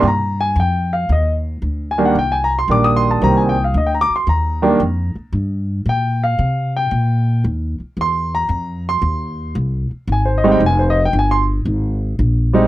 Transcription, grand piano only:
0.08 0.40 A#5 medium
0.41 0.57 G#5 medium
0.60 0.93 G5 medium
0.93 1.10 F5 medium
1.12 1.33 D#5 medium
1.91 2.03 G#5 medium
1.98 2.14 D#3 medium
1.98 2.14 G3 medium
1.98 2.14 A#3 medium
1.98 2.14 D4 medium
2.05 2.15 F#5 medium
2.19 2.34 G5 medium
2.32 2.50 G#5 medium
2.44 2.56 A#5 medium
2.59 2.68 C6 medium
2.69 3.20 D#3 medium
2.69 3.21 G3 medium
2.69 3.21 A#3 medium
2.69 3.21 D4 medium
2.69 2.87 D6 medium
2.84 3.03 D#6 medium
2.96 3.09 C6 loud
3.11 3.20 A5 medium
3.22 3.54 D#3 medium
3.22 3.54 G3 medium
3.22 3.54 A#3 medium
3.22 3.54 C4 medium
3.22 3.40 A#5 medium
3.37 3.55 G#5 medium
3.49 3.62 G5 medium
3.64 3.74 F5 medium
3.77 3.88 D#5 medium
3.87 3.92 G5 medium
3.94 4.11 A#5 medium
4.01 4.14 D6 loud
4.16 4.26 C6 medium
4.29 5.13 A#5 medium
4.62 4.78 D#3 medium
4.62 4.78 G3 medium
4.62 4.79 A#3 medium
4.62 4.79 D4 medium
5.89 6.22 G5 medium
6.24 6.72 F5 medium
6.77 7.42 G5 medium
8.01 8.33 C6 medium
8.35 8.83 A#5 medium
8.89 9.53 C6 medium
10.12 10.27 G#5 medium
10.25 10.43 C5 medium
10.38 10.49 D#5 medium
10.44 10.60 G3 medium
10.44 10.60 G#3 medium
10.44 10.60 C4 medium
10.44 10.60 D#4 medium
10.52 10.61 G5 medium
10.66 10.81 G#5 medium
10.79 10.96 C5 medium
10.90 11.02 D#5 medium
11.05 11.14 G5 medium
11.19 11.33 G#5 medium
11.31 11.42 C6 medium
12.53 12.68 G3 medium
12.53 12.68 G#3 medium
12.53 12.68 C4 medium
12.53 12.68 D#4 medium

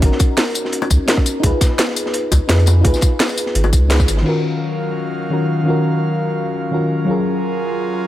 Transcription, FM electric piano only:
0.00 1.07 C#4 medium
0.00 1.08 D#4 medium
0.00 0.03 F#4 medium
0.00 1.07 F#4 medium
0.00 0.05 A#4 loud
0.05 1.08 A#4 loud
1.07 1.41 C#4 medium
1.07 1.39 D#4 medium
1.07 1.42 F#4 medium
1.07 1.42 A#4 medium
1.40 2.46 D#4 loud
1.40 2.47 F4 medium
1.44 2.48 G#4 medium
1.44 2.49 B4 loud
2.48 2.80 D#4 medium
2.48 2.82 F4 medium
2.48 2.83 G#4 medium
2.48 2.83 B4 medium
2.81 3.87 D#4 loud
2.81 3.88 F4 medium
2.85 3.89 G#4 medium
2.85 3.90 B4 loud
3.89 4.23 D#4 medium
3.89 4.23 F4 medium
3.89 4.24 G#4 medium
3.89 4.25 B4 medium
4.22 5.28 D#3 medium
4.22 5.29 C#4 medium
4.22 5.30 F4 medium
4.27 5.30 F#4 medium
4.27 5.31 A#4 loud
5.30 5.62 D#3 medium
5.30 5.64 C#4 medium
5.30 5.65 F4 medium
5.30 5.65 F#4 medium
5.30 5.66 A#4 medium
5.64 6.69 D#3 medium
5.64 6.70 C#4 medium
5.64 6.71 F4 medium
5.68 6.71 F#4 medium
5.68 6.72 A#4 loud
6.71 7.05 D#3 medium
6.71 7.05 C#4 medium
6.71 7.06 F4 medium
6.71 7.06 F#4 medium
6.71 7.07 A#4 medium
7.05 8.07 F#3 medium
7.05 8.07 C#4 medium
7.05 8.07 F4 medium
7.10 8.07 G#4 medium
7.10 8.07 A#4 loud

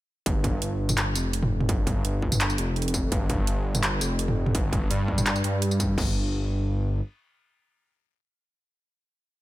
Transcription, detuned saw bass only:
0.26 0.60 G1 medium
0.62 1.14 G1 loud
1.15 1.68 F1 medium
1.69 2.03 G1 medium
2.05 2.57 G1 medium
2.58 3.11 F1 medium
3.12 3.46 G1 medium
3.48 4.00 G1 medium
4.01 4.53 F1 medium
4.55 4.89 G1 loud
4.90 5.43 G2 medium
5.44 5.96 G2 loud
5.98 7.01 G1 medium

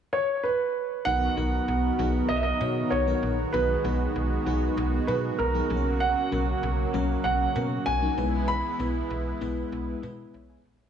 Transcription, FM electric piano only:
1.06 1.25 F#3 medium
1.06 1.26 B3 medium
1.06 1.26 D#4 medium
1.06 1.26 A#4 medium
1.36 1.76 F#3 medium
1.36 1.76 B3 medium
1.36 1.76 D#4 medium
1.36 1.76 A#4 medium
1.98 2.38 F#3 medium
1.98 2.38 B3 medium
1.98 2.38 D#4 medium
1.98 2.38 G#4 medium
2.60 2.90 F#3 medium
2.60 2.90 B3 medium
2.60 2.90 D#4 medium
2.60 2.90 C#5 medium
3.07 3.36 F#3 medium
3.07 3.36 B3 medium
3.07 3.37 D#4 medium
3.07 3.37 A#4 medium
3.53 3.73 F#3 medium
3.53 3.73 B3 medium
3.53 3.73 D#4 medium
3.53 3.73 G#4 medium
3.84 4.23 F#3 medium
3.84 4.23 B3 medium
3.84 4.24 D#4 medium
3.84 4.24 G#4 medium
4.46 4.85 F#3 medium
4.46 4.85 B3 medium
4.46 4.85 D#4 medium
4.46 4.86 G#4 loud
5.08 5.37 F#3 medium
5.08 5.37 B3 medium
5.08 5.38 D#4 medium
5.08 5.38 G#4 medium
5.54 5.68 F#3 medium
5.54 5.70 B3 medium
5.54 5.70 D#4 medium
5.54 5.69 G#4 medium
5.69 6.19 F#3 medium
5.69 6.19 A#3 medium
5.69 6.20 C#4 medium
5.69 5.77 G#4 medium
5.77 6.23 A#4 medium
6.31 6.70 F#3 medium
6.31 6.71 A#3 medium
6.31 6.71 C#4 medium
6.31 6.71 A#4 medium
6.93 7.32 F#3 medium
6.93 7.32 A#3 medium
6.93 7.33 C#4 medium
6.93 7.33 A#4 loud
7.55 7.85 F#3 medium
7.55 7.85 A#3 medium
7.55 7.85 C#4 medium
7.55 7.85 A#4 medium
8.01 8.17 F#3 medium
8.01 8.17 A#3 medium
8.01 8.18 C#4 medium
8.01 8.18 D#4 medium
8.17 8.67 G#3 medium
8.17 8.67 B3 medium
8.17 8.67 E4 medium
8.17 8.67 B4 medium
8.79 9.18 G#3 medium
8.79 9.18 B3 medium
8.79 9.18 E4 medium
8.79 9.19 B4 medium
9.41 9.80 G#3 medium
9.41 9.80 B3 medium
9.41 9.80 E4 medium
9.41 9.80 B4 medium
10.02 10.32 G#3 medium
10.02 10.32 B3 medium
10.02 10.32 E4 medium
10.02 10.33 B4 medium
10.34 10.49 C#5 medium
10.34 10.49 E5 medium
10.49 10.79 E5 medium
10.49 10.79 G#5 medium
10.80 10.90 C#5 medium
10.80 10.90 E5 medium

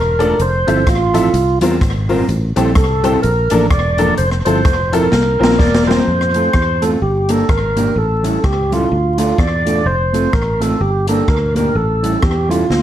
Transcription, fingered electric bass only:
0.00 0.32 E1 loud
0.39 0.63 F1 loud
0.68 0.84 G1 medium
0.87 1.27 A1 medium
1.34 1.57 C2 loud
1.61 1.78 E2 medium
1.81 2.21 G#1 loud
2.29 2.52 A1 loud
2.57 2.76 A#1 medium
2.76 3.16 C2 medium
3.24 3.47 A#1 loud
3.52 3.68 A1 medium
3.71 4.11 E1 loud
4.19 4.42 F1 loud
4.46 4.66 G1 medium
4.66 5.06 F1 medium
5.13 5.36 C2 loud
5.40 5.57 A#1 loud
5.60 6.00 E1 medium
6.07 6.47 F2 medium
6.54 6.94 E2 medium
7.02 7.42 G1 medium
7.49 7.89 G#1 medium
7.96 8.36 A1 loud
8.44 8.84 C#2 medium
8.92 9.32 D2 medium
9.38 9.87 E2 medium
9.86 10.26 F1 loud
10.33 10.74 A1 medium
10.81 11.21 G1 loud
11.28 11.69 D2 loud
11.75 12.16 A1 loud
12.23 12.63 E2 loud
12.70 12.82 D2 medium

